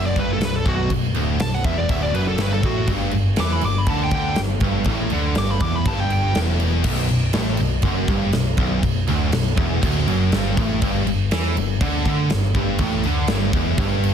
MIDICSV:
0, 0, Header, 1, 5, 480
1, 0, Start_track
1, 0, Key_signature, 2, "minor"
1, 0, Tempo, 495868
1, 871, Time_signature, 4, 2, 24, 8
1, 13687, End_track
2, 0, Start_track
2, 0, Title_t, "Lead electric guitar"
2, 0, Program_c, 0, 29
2, 57, Note_on_c, 0, 74, 83
2, 162, Note_off_c, 0, 74, 0
2, 187, Note_on_c, 0, 71, 81
2, 287, Note_off_c, 0, 71, 0
2, 324, Note_on_c, 0, 69, 81
2, 431, Note_off_c, 0, 69, 0
2, 431, Note_on_c, 0, 71, 93
2, 539, Note_off_c, 0, 71, 0
2, 539, Note_on_c, 0, 69, 84
2, 642, Note_off_c, 0, 69, 0
2, 660, Note_on_c, 0, 66, 87
2, 879, Note_off_c, 0, 66, 0
2, 1367, Note_on_c, 0, 81, 103
2, 1493, Note_off_c, 0, 81, 0
2, 1493, Note_on_c, 0, 78, 86
2, 1600, Note_off_c, 0, 78, 0
2, 1600, Note_on_c, 0, 76, 92
2, 1712, Note_off_c, 0, 76, 0
2, 1722, Note_on_c, 0, 74, 89
2, 1833, Note_off_c, 0, 74, 0
2, 1847, Note_on_c, 0, 76, 82
2, 1955, Note_off_c, 0, 76, 0
2, 1963, Note_on_c, 0, 74, 79
2, 2074, Note_off_c, 0, 74, 0
2, 2075, Note_on_c, 0, 71, 92
2, 2190, Note_off_c, 0, 71, 0
2, 2206, Note_on_c, 0, 69, 106
2, 2337, Note_off_c, 0, 69, 0
2, 2337, Note_on_c, 0, 71, 86
2, 2440, Note_off_c, 0, 71, 0
2, 2456, Note_on_c, 0, 69, 89
2, 2571, Note_off_c, 0, 69, 0
2, 2571, Note_on_c, 0, 66, 100
2, 2794, Note_off_c, 0, 66, 0
2, 3293, Note_on_c, 0, 86, 102
2, 3413, Note_off_c, 0, 86, 0
2, 3413, Note_on_c, 0, 83, 89
2, 3518, Note_off_c, 0, 83, 0
2, 3538, Note_on_c, 0, 86, 106
2, 3662, Note_off_c, 0, 86, 0
2, 3662, Note_on_c, 0, 83, 104
2, 3770, Note_off_c, 0, 83, 0
2, 3770, Note_on_c, 0, 81, 82
2, 3877, Note_off_c, 0, 81, 0
2, 3908, Note_on_c, 0, 79, 77
2, 4006, Note_off_c, 0, 79, 0
2, 4022, Note_on_c, 0, 79, 104
2, 4239, Note_off_c, 0, 79, 0
2, 5211, Note_on_c, 0, 86, 98
2, 5317, Note_off_c, 0, 86, 0
2, 5335, Note_on_c, 0, 83, 92
2, 5436, Note_off_c, 0, 83, 0
2, 5436, Note_on_c, 0, 86, 88
2, 5570, Note_off_c, 0, 86, 0
2, 5570, Note_on_c, 0, 83, 98
2, 5685, Note_off_c, 0, 83, 0
2, 5685, Note_on_c, 0, 81, 87
2, 5808, Note_off_c, 0, 81, 0
2, 5808, Note_on_c, 0, 79, 83
2, 5915, Note_off_c, 0, 79, 0
2, 5934, Note_on_c, 0, 79, 104
2, 6154, Note_off_c, 0, 79, 0
2, 13687, End_track
3, 0, Start_track
3, 0, Title_t, "Distorted electric guitar"
3, 0, Program_c, 1, 30
3, 0, Note_on_c, 1, 42, 108
3, 148, Note_off_c, 1, 42, 0
3, 152, Note_on_c, 1, 43, 98
3, 385, Note_off_c, 1, 43, 0
3, 393, Note_on_c, 1, 35, 74
3, 584, Note_off_c, 1, 35, 0
3, 638, Note_on_c, 1, 35, 98
3, 867, Note_off_c, 1, 35, 0
3, 882, Note_on_c, 1, 35, 67
3, 1069, Note_off_c, 1, 35, 0
3, 1125, Note_on_c, 1, 38, 101
3, 1351, Note_off_c, 1, 38, 0
3, 1367, Note_on_c, 1, 35, 74
3, 1551, Note_off_c, 1, 35, 0
3, 1612, Note_on_c, 1, 40, 94
3, 1834, Note_off_c, 1, 40, 0
3, 1846, Note_on_c, 1, 38, 102
3, 2071, Note_off_c, 1, 38, 0
3, 2085, Note_on_c, 1, 42, 101
3, 2307, Note_off_c, 1, 42, 0
3, 2311, Note_on_c, 1, 43, 99
3, 2542, Note_off_c, 1, 43, 0
3, 2546, Note_on_c, 1, 45, 99
3, 2781, Note_off_c, 1, 45, 0
3, 2800, Note_on_c, 1, 43, 112
3, 3028, Note_off_c, 1, 43, 0
3, 3044, Note_on_c, 1, 43, 69
3, 3229, Note_off_c, 1, 43, 0
3, 3286, Note_on_c, 1, 52, 109
3, 3511, Note_off_c, 1, 52, 0
3, 3514, Note_on_c, 1, 43, 69
3, 3704, Note_off_c, 1, 43, 0
3, 3754, Note_on_c, 1, 50, 107
3, 3977, Note_off_c, 1, 50, 0
3, 3989, Note_on_c, 1, 50, 105
3, 4222, Note_off_c, 1, 50, 0
3, 4247, Note_on_c, 1, 43, 71
3, 4430, Note_off_c, 1, 43, 0
3, 4491, Note_on_c, 1, 43, 98
3, 4713, Note_off_c, 1, 43, 0
3, 4740, Note_on_c, 1, 45, 100
3, 4957, Note_off_c, 1, 45, 0
3, 4977, Note_on_c, 1, 50, 97
3, 5196, Note_off_c, 1, 50, 0
3, 5209, Note_on_c, 1, 43, 103
3, 5432, Note_off_c, 1, 43, 0
3, 5440, Note_on_c, 1, 40, 102
3, 5667, Note_off_c, 1, 40, 0
3, 5676, Note_on_c, 1, 43, 109
3, 6145, Note_off_c, 1, 43, 0
3, 6151, Note_on_c, 1, 40, 95
3, 6622, Note_off_c, 1, 40, 0
3, 6626, Note_on_c, 1, 35, 101
3, 6851, Note_off_c, 1, 35, 0
3, 6863, Note_on_c, 1, 35, 72
3, 7057, Note_off_c, 1, 35, 0
3, 7109, Note_on_c, 1, 45, 105
3, 7341, Note_off_c, 1, 45, 0
3, 7356, Note_on_c, 1, 35, 71
3, 7544, Note_off_c, 1, 35, 0
3, 7594, Note_on_c, 1, 42, 104
3, 7824, Note_off_c, 1, 42, 0
3, 7832, Note_on_c, 1, 43, 98
3, 8063, Note_off_c, 1, 43, 0
3, 8071, Note_on_c, 1, 35, 77
3, 8262, Note_off_c, 1, 35, 0
3, 8316, Note_on_c, 1, 35, 104
3, 8539, Note_off_c, 1, 35, 0
3, 8551, Note_on_c, 1, 35, 73
3, 8741, Note_off_c, 1, 35, 0
3, 8796, Note_on_c, 1, 38, 92
3, 9025, Note_off_c, 1, 38, 0
3, 9036, Note_on_c, 1, 35, 77
3, 9224, Note_off_c, 1, 35, 0
3, 9271, Note_on_c, 1, 40, 101
3, 9495, Note_off_c, 1, 40, 0
3, 9499, Note_on_c, 1, 38, 114
3, 9736, Note_off_c, 1, 38, 0
3, 9750, Note_on_c, 1, 42, 102
3, 9982, Note_off_c, 1, 42, 0
3, 10003, Note_on_c, 1, 43, 99
3, 10228, Note_off_c, 1, 43, 0
3, 10245, Note_on_c, 1, 45, 102
3, 10469, Note_off_c, 1, 45, 0
3, 10483, Note_on_c, 1, 43, 105
3, 10708, Note_off_c, 1, 43, 0
3, 10724, Note_on_c, 1, 43, 70
3, 10908, Note_off_c, 1, 43, 0
3, 10961, Note_on_c, 1, 52, 106
3, 11187, Note_off_c, 1, 52, 0
3, 11197, Note_on_c, 1, 43, 69
3, 11384, Note_off_c, 1, 43, 0
3, 11435, Note_on_c, 1, 50, 111
3, 11650, Note_off_c, 1, 50, 0
3, 11662, Note_on_c, 1, 50, 106
3, 11898, Note_off_c, 1, 50, 0
3, 11906, Note_on_c, 1, 43, 75
3, 12099, Note_off_c, 1, 43, 0
3, 12144, Note_on_c, 1, 43, 100
3, 12373, Note_off_c, 1, 43, 0
3, 12377, Note_on_c, 1, 45, 107
3, 12615, Note_off_c, 1, 45, 0
3, 12625, Note_on_c, 1, 50, 98
3, 12851, Note_on_c, 1, 43, 97
3, 12859, Note_off_c, 1, 50, 0
3, 13093, Note_off_c, 1, 43, 0
3, 13100, Note_on_c, 1, 40, 94
3, 13332, Note_off_c, 1, 40, 0
3, 13336, Note_on_c, 1, 43, 103
3, 13687, Note_off_c, 1, 43, 0
3, 13687, End_track
4, 0, Start_track
4, 0, Title_t, "Picked electric bass"
4, 0, Program_c, 2, 34
4, 0, Note_on_c, 2, 30, 96
4, 137, Note_off_c, 2, 30, 0
4, 159, Note_on_c, 2, 31, 93
4, 379, Note_off_c, 2, 31, 0
4, 396, Note_on_c, 2, 23, 75
4, 617, Note_off_c, 2, 23, 0
4, 637, Note_on_c, 2, 23, 91
4, 857, Note_off_c, 2, 23, 0
4, 879, Note_on_c, 2, 23, 82
4, 1098, Note_off_c, 2, 23, 0
4, 1108, Note_on_c, 2, 26, 93
4, 1332, Note_off_c, 2, 26, 0
4, 1358, Note_on_c, 2, 23, 86
4, 1578, Note_off_c, 2, 23, 0
4, 1596, Note_on_c, 2, 28, 100
4, 1817, Note_off_c, 2, 28, 0
4, 1835, Note_on_c, 2, 26, 99
4, 2056, Note_off_c, 2, 26, 0
4, 2074, Note_on_c, 2, 30, 93
4, 2295, Note_off_c, 2, 30, 0
4, 2307, Note_on_c, 2, 31, 94
4, 2532, Note_off_c, 2, 31, 0
4, 2552, Note_on_c, 2, 33, 92
4, 2774, Note_off_c, 2, 33, 0
4, 2788, Note_on_c, 2, 31, 90
4, 3012, Note_off_c, 2, 31, 0
4, 3041, Note_on_c, 2, 31, 88
4, 3259, Note_off_c, 2, 31, 0
4, 3269, Note_on_c, 2, 40, 96
4, 3492, Note_off_c, 2, 40, 0
4, 3509, Note_on_c, 2, 31, 82
4, 3732, Note_off_c, 2, 31, 0
4, 3747, Note_on_c, 2, 38, 97
4, 3972, Note_off_c, 2, 38, 0
4, 3990, Note_on_c, 2, 38, 104
4, 4213, Note_off_c, 2, 38, 0
4, 4226, Note_on_c, 2, 31, 85
4, 4451, Note_off_c, 2, 31, 0
4, 4462, Note_on_c, 2, 31, 97
4, 4689, Note_off_c, 2, 31, 0
4, 4704, Note_on_c, 2, 33, 92
4, 4930, Note_off_c, 2, 33, 0
4, 4946, Note_on_c, 2, 38, 88
4, 5171, Note_off_c, 2, 38, 0
4, 5183, Note_on_c, 2, 31, 97
4, 5409, Note_off_c, 2, 31, 0
4, 5429, Note_on_c, 2, 28, 101
4, 5652, Note_off_c, 2, 28, 0
4, 5670, Note_on_c, 2, 31, 100
4, 6116, Note_off_c, 2, 31, 0
4, 6158, Note_on_c, 2, 28, 92
4, 6600, Note_off_c, 2, 28, 0
4, 6632, Note_on_c, 2, 23, 90
4, 6853, Note_off_c, 2, 23, 0
4, 6882, Note_on_c, 2, 23, 80
4, 7099, Note_off_c, 2, 23, 0
4, 7122, Note_on_c, 2, 33, 94
4, 7339, Note_off_c, 2, 33, 0
4, 7355, Note_on_c, 2, 23, 90
4, 7573, Note_off_c, 2, 23, 0
4, 7579, Note_on_c, 2, 30, 95
4, 7806, Note_off_c, 2, 30, 0
4, 7830, Note_on_c, 2, 31, 104
4, 8052, Note_off_c, 2, 31, 0
4, 8073, Note_on_c, 2, 23, 87
4, 8294, Note_off_c, 2, 23, 0
4, 8306, Note_on_c, 2, 23, 102
4, 8530, Note_off_c, 2, 23, 0
4, 8549, Note_on_c, 2, 23, 82
4, 8772, Note_off_c, 2, 23, 0
4, 8795, Note_on_c, 2, 26, 102
4, 9015, Note_off_c, 2, 26, 0
4, 9039, Note_on_c, 2, 23, 78
4, 9257, Note_off_c, 2, 23, 0
4, 9274, Note_on_c, 2, 28, 97
4, 9494, Note_off_c, 2, 28, 0
4, 9514, Note_on_c, 2, 26, 98
4, 9734, Note_off_c, 2, 26, 0
4, 9752, Note_on_c, 2, 30, 106
4, 9973, Note_off_c, 2, 30, 0
4, 9994, Note_on_c, 2, 31, 104
4, 10214, Note_off_c, 2, 31, 0
4, 10238, Note_on_c, 2, 33, 99
4, 10457, Note_off_c, 2, 33, 0
4, 10478, Note_on_c, 2, 31, 104
4, 10696, Note_off_c, 2, 31, 0
4, 10708, Note_on_c, 2, 31, 88
4, 10931, Note_off_c, 2, 31, 0
4, 10962, Note_on_c, 2, 40, 97
4, 11179, Note_off_c, 2, 40, 0
4, 11210, Note_on_c, 2, 31, 87
4, 11423, Note_off_c, 2, 31, 0
4, 11433, Note_on_c, 2, 38, 103
4, 11654, Note_off_c, 2, 38, 0
4, 11675, Note_on_c, 2, 38, 98
4, 11895, Note_off_c, 2, 38, 0
4, 11913, Note_on_c, 2, 31, 85
4, 12134, Note_off_c, 2, 31, 0
4, 12145, Note_on_c, 2, 31, 103
4, 12370, Note_off_c, 2, 31, 0
4, 12389, Note_on_c, 2, 33, 100
4, 12612, Note_off_c, 2, 33, 0
4, 12636, Note_on_c, 2, 38, 100
4, 12856, Note_off_c, 2, 38, 0
4, 12872, Note_on_c, 2, 31, 95
4, 13094, Note_off_c, 2, 31, 0
4, 13106, Note_on_c, 2, 28, 98
4, 13330, Note_off_c, 2, 28, 0
4, 13341, Note_on_c, 2, 31, 89
4, 13687, Note_off_c, 2, 31, 0
4, 13687, End_track
5, 0, Start_track
5, 0, Title_t, "Drums"
5, 156, Note_on_c, 9, 36, 101
5, 164, Note_on_c, 9, 49, 56
5, 253, Note_off_c, 9, 36, 0
5, 261, Note_off_c, 9, 49, 0
5, 395, Note_on_c, 9, 49, 74
5, 403, Note_on_c, 9, 38, 114
5, 492, Note_off_c, 9, 49, 0
5, 500, Note_off_c, 9, 38, 0
5, 636, Note_on_c, 9, 36, 105
5, 642, Note_on_c, 9, 49, 55
5, 733, Note_off_c, 9, 36, 0
5, 739, Note_off_c, 9, 49, 0
5, 873, Note_on_c, 9, 36, 89
5, 873, Note_on_c, 9, 49, 80
5, 970, Note_off_c, 9, 36, 0
5, 970, Note_off_c, 9, 49, 0
5, 1108, Note_on_c, 9, 49, 57
5, 1204, Note_off_c, 9, 49, 0
5, 1351, Note_on_c, 9, 49, 85
5, 1359, Note_on_c, 9, 38, 118
5, 1448, Note_off_c, 9, 49, 0
5, 1456, Note_off_c, 9, 38, 0
5, 1479, Note_on_c, 9, 38, 32
5, 1576, Note_off_c, 9, 38, 0
5, 1592, Note_on_c, 9, 36, 114
5, 1595, Note_on_c, 9, 49, 68
5, 1689, Note_off_c, 9, 36, 0
5, 1691, Note_off_c, 9, 49, 0
5, 1830, Note_on_c, 9, 49, 87
5, 1832, Note_on_c, 9, 36, 111
5, 1927, Note_off_c, 9, 49, 0
5, 1929, Note_off_c, 9, 36, 0
5, 2077, Note_on_c, 9, 49, 65
5, 2174, Note_off_c, 9, 49, 0
5, 2302, Note_on_c, 9, 49, 83
5, 2310, Note_on_c, 9, 38, 107
5, 2399, Note_off_c, 9, 49, 0
5, 2407, Note_off_c, 9, 38, 0
5, 2550, Note_on_c, 9, 36, 103
5, 2554, Note_on_c, 9, 49, 63
5, 2646, Note_off_c, 9, 36, 0
5, 2651, Note_off_c, 9, 49, 0
5, 2782, Note_on_c, 9, 49, 82
5, 2785, Note_on_c, 9, 36, 102
5, 2879, Note_off_c, 9, 49, 0
5, 2882, Note_off_c, 9, 36, 0
5, 3014, Note_on_c, 9, 49, 62
5, 3111, Note_off_c, 9, 49, 0
5, 3254, Note_on_c, 9, 49, 88
5, 3262, Note_on_c, 9, 38, 122
5, 3351, Note_off_c, 9, 49, 0
5, 3358, Note_off_c, 9, 38, 0
5, 3497, Note_on_c, 9, 49, 70
5, 3594, Note_off_c, 9, 49, 0
5, 3740, Note_on_c, 9, 49, 83
5, 3744, Note_on_c, 9, 36, 112
5, 3837, Note_off_c, 9, 49, 0
5, 3841, Note_off_c, 9, 36, 0
5, 3977, Note_on_c, 9, 49, 60
5, 3983, Note_on_c, 9, 36, 99
5, 4074, Note_off_c, 9, 49, 0
5, 4080, Note_off_c, 9, 36, 0
5, 4216, Note_on_c, 9, 49, 71
5, 4224, Note_on_c, 9, 38, 110
5, 4313, Note_off_c, 9, 49, 0
5, 4320, Note_off_c, 9, 38, 0
5, 4455, Note_on_c, 9, 49, 61
5, 4463, Note_on_c, 9, 36, 102
5, 4552, Note_off_c, 9, 49, 0
5, 4560, Note_off_c, 9, 36, 0
5, 4689, Note_on_c, 9, 49, 80
5, 4702, Note_on_c, 9, 36, 108
5, 4785, Note_off_c, 9, 49, 0
5, 4798, Note_off_c, 9, 36, 0
5, 4935, Note_on_c, 9, 49, 56
5, 5032, Note_off_c, 9, 49, 0
5, 5179, Note_on_c, 9, 49, 89
5, 5187, Note_on_c, 9, 38, 117
5, 5276, Note_off_c, 9, 49, 0
5, 5284, Note_off_c, 9, 38, 0
5, 5423, Note_on_c, 9, 49, 65
5, 5427, Note_on_c, 9, 36, 107
5, 5519, Note_off_c, 9, 49, 0
5, 5524, Note_off_c, 9, 36, 0
5, 5669, Note_on_c, 9, 36, 118
5, 5672, Note_on_c, 9, 49, 79
5, 5766, Note_off_c, 9, 36, 0
5, 5769, Note_off_c, 9, 49, 0
5, 5908, Note_on_c, 9, 49, 62
5, 6004, Note_off_c, 9, 49, 0
5, 6145, Note_on_c, 9, 49, 83
5, 6153, Note_on_c, 9, 38, 111
5, 6242, Note_off_c, 9, 49, 0
5, 6250, Note_off_c, 9, 38, 0
5, 6385, Note_on_c, 9, 49, 62
5, 6482, Note_off_c, 9, 49, 0
5, 6620, Note_on_c, 9, 49, 84
5, 6620, Note_on_c, 9, 57, 120
5, 6625, Note_on_c, 9, 36, 102
5, 6717, Note_off_c, 9, 49, 0
5, 6717, Note_off_c, 9, 57, 0
5, 6721, Note_off_c, 9, 36, 0
5, 6859, Note_on_c, 9, 49, 65
5, 6956, Note_off_c, 9, 49, 0
5, 7095, Note_on_c, 9, 49, 92
5, 7103, Note_on_c, 9, 38, 124
5, 7192, Note_off_c, 9, 49, 0
5, 7199, Note_off_c, 9, 38, 0
5, 7329, Note_on_c, 9, 49, 71
5, 7425, Note_off_c, 9, 49, 0
5, 7569, Note_on_c, 9, 49, 81
5, 7580, Note_on_c, 9, 36, 111
5, 7666, Note_off_c, 9, 49, 0
5, 7677, Note_off_c, 9, 36, 0
5, 7820, Note_on_c, 9, 49, 62
5, 7823, Note_on_c, 9, 36, 116
5, 7917, Note_off_c, 9, 49, 0
5, 7920, Note_off_c, 9, 36, 0
5, 8059, Note_on_c, 9, 49, 79
5, 8067, Note_on_c, 9, 38, 111
5, 8156, Note_off_c, 9, 49, 0
5, 8164, Note_off_c, 9, 38, 0
5, 8296, Note_on_c, 9, 49, 58
5, 8305, Note_on_c, 9, 36, 100
5, 8393, Note_off_c, 9, 49, 0
5, 8401, Note_off_c, 9, 36, 0
5, 8547, Note_on_c, 9, 49, 84
5, 8548, Note_on_c, 9, 36, 90
5, 8644, Note_off_c, 9, 49, 0
5, 8645, Note_off_c, 9, 36, 0
5, 8783, Note_on_c, 9, 49, 60
5, 8880, Note_off_c, 9, 49, 0
5, 9025, Note_on_c, 9, 49, 86
5, 9032, Note_on_c, 9, 38, 118
5, 9121, Note_off_c, 9, 49, 0
5, 9129, Note_off_c, 9, 38, 0
5, 9264, Note_on_c, 9, 49, 61
5, 9269, Note_on_c, 9, 36, 116
5, 9361, Note_off_c, 9, 49, 0
5, 9366, Note_off_c, 9, 36, 0
5, 9514, Note_on_c, 9, 36, 113
5, 9519, Note_on_c, 9, 49, 92
5, 9611, Note_off_c, 9, 36, 0
5, 9616, Note_off_c, 9, 49, 0
5, 9754, Note_on_c, 9, 49, 65
5, 9851, Note_off_c, 9, 49, 0
5, 9990, Note_on_c, 9, 49, 81
5, 9998, Note_on_c, 9, 38, 108
5, 10087, Note_off_c, 9, 49, 0
5, 10094, Note_off_c, 9, 38, 0
5, 10235, Note_on_c, 9, 36, 115
5, 10240, Note_on_c, 9, 49, 70
5, 10332, Note_off_c, 9, 36, 0
5, 10336, Note_off_c, 9, 49, 0
5, 10470, Note_on_c, 9, 49, 92
5, 10475, Note_on_c, 9, 36, 108
5, 10567, Note_off_c, 9, 49, 0
5, 10572, Note_off_c, 9, 36, 0
5, 10714, Note_on_c, 9, 49, 61
5, 10811, Note_off_c, 9, 49, 0
5, 10949, Note_on_c, 9, 49, 97
5, 10957, Note_on_c, 9, 38, 121
5, 11046, Note_off_c, 9, 49, 0
5, 11054, Note_off_c, 9, 38, 0
5, 11198, Note_on_c, 9, 49, 70
5, 11295, Note_off_c, 9, 49, 0
5, 11431, Note_on_c, 9, 36, 114
5, 11432, Note_on_c, 9, 49, 93
5, 11528, Note_off_c, 9, 36, 0
5, 11528, Note_off_c, 9, 49, 0
5, 11670, Note_on_c, 9, 36, 103
5, 11676, Note_on_c, 9, 49, 61
5, 11767, Note_off_c, 9, 36, 0
5, 11773, Note_off_c, 9, 49, 0
5, 11905, Note_on_c, 9, 49, 73
5, 11912, Note_on_c, 9, 38, 110
5, 12002, Note_off_c, 9, 49, 0
5, 12009, Note_off_c, 9, 38, 0
5, 12146, Note_on_c, 9, 36, 107
5, 12149, Note_on_c, 9, 49, 59
5, 12243, Note_off_c, 9, 36, 0
5, 12245, Note_off_c, 9, 49, 0
5, 12375, Note_on_c, 9, 49, 80
5, 12382, Note_on_c, 9, 36, 104
5, 12472, Note_off_c, 9, 49, 0
5, 12479, Note_off_c, 9, 36, 0
5, 12618, Note_on_c, 9, 49, 56
5, 12714, Note_off_c, 9, 49, 0
5, 12850, Note_on_c, 9, 49, 80
5, 12858, Note_on_c, 9, 38, 124
5, 12947, Note_off_c, 9, 49, 0
5, 12955, Note_off_c, 9, 38, 0
5, 13097, Note_on_c, 9, 49, 62
5, 13100, Note_on_c, 9, 36, 113
5, 13193, Note_off_c, 9, 49, 0
5, 13197, Note_off_c, 9, 36, 0
5, 13336, Note_on_c, 9, 49, 84
5, 13340, Note_on_c, 9, 36, 119
5, 13433, Note_off_c, 9, 49, 0
5, 13437, Note_off_c, 9, 36, 0
5, 13586, Note_on_c, 9, 49, 59
5, 13682, Note_off_c, 9, 49, 0
5, 13687, End_track
0, 0, End_of_file